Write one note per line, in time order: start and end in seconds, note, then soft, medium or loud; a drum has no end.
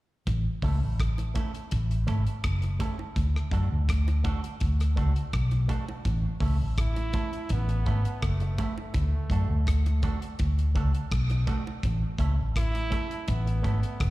0.27 0.45 A1 loud
0.27 kick loud
0.27 closed hi-hat medium
0.27 high bongo medium
0.62 0.83 C#2 medium
0.62 0.78 A3 medium
0.62 0.78 C#4 medium
0.62 0.78 E4 medium
0.62 0.78 A4 medium
0.62 kick medium
0.62 open hi-hat soft
0.82 1.33 A1 medium
1.00 kick loud
1.00 cross-stick loud
1.00 closed hi-hat loud
1.18 closed hi-hat soft
1.18 high bongo medium
1.34 1.50 A3 medium
1.34 1.50 C#4 medium
1.34 1.50 E4 medium
1.34 1.51 A4 medium
1.34 kick loud
1.34 closed hi-hat medium
1.34 high bongo soft
1.54 muted clean electric guitar stroke soft
1.54 closed hi-hat medium
1.71 2.07 A1 medium
1.71 kick loud
1.71 closed hi-hat medium
1.71 high bongo medium
1.91 closed hi-hat soft
2.07 2.26 G#1 medium
2.07 2.22 A3 loud
2.07 2.22 C#4 medium
2.07 2.23 E4 loud
2.07 2.23 A4 loud
2.07 kick medium
2.07 closed hi-hat medium
2.27 closed hi-hat medium
2.44 2.79 F#1 loud
2.44 kick loud
2.44 cross-stick loud
2.44 closed hi-hat medium
2.62 closed hi-hat medium
2.62 high bongo soft
2.79 2.94 A3 medium
2.79 2.95 C#4 medium
2.79 2.95 E4 medium
2.79 2.95 A4 loud
2.79 kick medium
2.79 closed hi-hat medium
2.79 low bongo medium
2.99 muted clean electric guitar stroke soft
2.99 high bongo medium
3.16 3.34 D2 loud
3.16 kick loud
3.16 closed hi-hat medium
3.16 high bongo medium
3.36 cross-stick medium
3.51 3.70 F#2 medium
3.51 3.67 A3 medium
3.51 3.67 D4 medium
3.51 3.67 F#4 medium
3.51 3.68 A4 medium
3.51 kick medium
3.51 closed hi-hat medium
3.72 4.23 D2 medium
3.89 kick loud
3.89 cross-stick loud
3.89 closed hi-hat loud
4.08 closed hi-hat soft
4.08 high bongo medium
4.24 4.39 A3 medium
4.24 4.39 D4 medium
4.24 4.40 F#4 medium
4.24 4.40 A4 medium
4.24 kick loud
4.24 closed hi-hat medium
4.24 high bongo medium
4.44 muted clean electric guitar stroke medium
4.44 closed hi-hat medium
4.60 4.96 D2 medium
4.60 kick loud
4.60 closed hi-hat medium
4.60 high bongo medium
4.80 cross-stick medium
4.80 closed hi-hat medium
4.96 5.15 C#2 medium
4.96 5.11 A3 medium
4.96 5.12 D4 medium
4.96 5.12 F#4 medium
4.96 5.12 A4 medium
4.96 kick medium
4.96 closed hi-hat soft
5.16 closed hi-hat medium
5.33 5.68 B1 medium
5.33 kick loud
5.33 cross-stick loud
5.33 closed hi-hat medium
5.51 closed hi-hat soft
5.51 high bongo soft
5.68 5.83 A3 medium
5.68 5.84 D4 medium
5.68 5.84 F#4 medium
5.68 5.84 A4 loud
5.68 kick medium
5.68 closed hi-hat medium
5.68 low bongo medium
5.87 muted clean electric guitar stroke soft
5.87 high bongo medium
6.05 6.23 A1 loud
6.05 kick loud
6.05 closed hi-hat medium
6.05 high bongo medium
6.40 6.61 C#2 medium
6.40 6.56 A3 medium
6.40 6.56 C#4 medium
6.40 6.56 E4 medium
6.40 6.57 A4 medium
6.40 kick medium
6.40 open hi-hat medium
6.61 7.12 A1 medium
6.78 7.54 E4 loud
6.78 kick loud
6.78 cross-stick loud
6.78 closed hi-hat loud
6.96 closed hi-hat soft
6.96 high bongo medium
7.13 7.28 A3 medium
7.13 7.29 C#4 medium
7.13 7.29 E4 medium
7.13 7.29 A4 medium
7.13 kick loud
7.13 closed hi-hat medium
7.13 low bongo medium
7.33 closed hi-hat soft
7.49 7.85 A1 medium
7.49 8.26 B3 loud
7.49 kick loud
7.49 closed hi-hat medium
7.49 high bongo medium
7.68 muted clean electric guitar stroke soft
7.68 closed hi-hat medium
7.85 8.04 G#1 medium
7.85 8.01 A3 medium
7.85 8.01 C#4 medium
7.85 8.01 E4 loud
7.85 8.01 A4 medium
7.85 kick medium
7.85 closed hi-hat medium
8.05 closed hi-hat medium
8.22 8.57 F#1 medium
8.22 8.78 A3 medium
8.22 kick loud
8.22 cross-stick loud
8.22 closed hi-hat medium
8.40 muted clean electric guitar stroke medium
8.40 closed hi-hat soft
8.40 high bongo soft
8.58 8.73 A3 medium
8.58 8.73 C#4 medium
8.58 8.73 E4 medium
8.58 8.74 A4 medium
8.58 kick medium
8.58 closed hi-hat medium
8.58 low bongo medium
8.78 10.19 A3 medium
8.78 high bongo medium
8.94 9.13 D2 loud
8.94 kick loud
8.94 closed hi-hat medium
8.94 high bongo medium
9.30 9.48 F#2 medium
9.30 9.45 A3 medium
9.30 9.45 D4 medium
9.30 9.46 F#4 medium
9.30 9.46 A4 medium
9.30 kick medium
9.30 closed hi-hat medium
9.50 10.00 D2 medium
9.67 kick loud
9.67 cross-stick loud
9.67 closed hi-hat loud
9.86 closed hi-hat soft
9.86 high bongo medium
10.03 10.18 A3 medium
10.03 10.18 D4 medium
10.03 10.18 F#4 loud
10.03 10.18 A4 medium
10.03 kick medium
10.03 closed hi-hat medium
10.03 low bongo medium
10.22 closed hi-hat medium
10.39 10.74 D2 medium
10.39 kick loud
10.39 closed hi-hat medium
10.39 high bongo medium
10.59 closed hi-hat soft
10.75 10.94 C#2 medium
10.75 10.90 A3 medium
10.75 10.90 D4 medium
10.75 10.90 F#4 medium
10.75 10.91 A4 medium
10.75 kick medium
10.75 closed hi-hat medium
10.94 closed hi-hat medium
11.12 11.46 B1 medium
11.12 kick loud
11.12 cross-stick loud
11.12 closed hi-hat medium
11.30 muted clean electric guitar stroke soft
11.30 closed hi-hat medium
11.30 high bongo medium
11.47 11.62 A3 medium
11.47 11.62 D4 medium
11.47 11.63 F#4 loud
11.47 11.63 A4 medium
11.47 kick loud
11.47 closed hi-hat medium
11.47 low bongo medium
11.67 high bongo medium
11.83 12.02 A1 loud
11.83 kick loud
11.83 closed hi-hat medium
11.83 high bongo medium
12.18 12.39 C#2 medium
12.18 12.34 A3 medium
12.18 12.34 C#4 medium
12.18 12.35 E4 medium
12.18 12.35 A4 medium
12.18 kick medium
12.18 closed hi-hat medium
12.39 12.90 A1 medium
12.56 13.31 E4 loud
12.56 kick loud
12.56 cross-stick loud
12.56 closed hi-hat loud
12.75 closed hi-hat soft
12.75 high bongo medium
12.90 13.06 A3 medium
12.90 13.06 C#4 medium
12.90 13.07 E4 medium
12.90 13.07 A4 medium
12.90 kick medium
12.90 closed hi-hat medium
12.90 low bongo medium
13.11 closed hi-hat medium
13.28 13.63 A1 medium
13.28 14.10 B3 loud
13.28 kick loud
13.28 closed hi-hat loud
13.28 high bongo medium
13.46 muted clean electric guitar stroke soft
13.46 closed hi-hat medium
13.62 13.82 G#1 medium
13.62 13.78 A3 medium
13.62 13.79 C#4 medium
13.62 13.79 E4 loud
13.62 13.79 A4 medium
13.62 kick medium
13.62 closed hi-hat soft
13.83 closed hi-hat medium
14.00 14.10 F#1 medium
14.00 kick loud
14.00 cross-stick loud
14.00 closed hi-hat medium